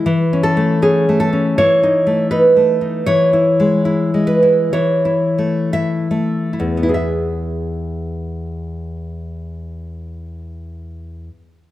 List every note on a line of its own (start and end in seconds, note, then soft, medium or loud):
0.06 1.55 E3 medium
0.33 0.81 C#4 soft
0.43 0.81 A4 medium
0.57 1.08 A3 soft
0.82 1.32 C#4 soft
0.82 1.19 G#4 medium
1.09 1.59 A3 soft
1.20 1.57 A4 medium
1.33 1.59 C#4 soft
1.58 3.03 E3 medium
1.58 2.29 C#5 medium
1.83 2.30 D#4 soft
2.07 2.55 A3 soft
2.31 2.80 D#4 soft
2.31 3.04 B4 medium
2.56 3.07 A3 soft
2.81 3.07 D#4 soft
3.06 4.69 E3 medium
3.06 4.24 C#5 medium
3.33 3.84 E4 soft
3.60 4.13 G#3 soft
3.85 4.41 E4 soft
4.14 4.73 G#3 soft
4.27 4.71 B4 medium
4.43 4.73 E4 soft
4.73 6.89 E3 medium
4.73 5.69 C#5 medium
5.05 5.73 E4 soft
5.38 6.10 A3 soft
5.73 6.52 E4 soft
5.73 6.83 E5 medium
6.11 6.93 A3 soft
6.53 6.82 E4 soft
6.60 11.28 E2 soft
6.77 11.46 B3 soft
6.83 6.94 E4 soft
6.89 11.58 G#4 soft
6.94 11.63 E5 soft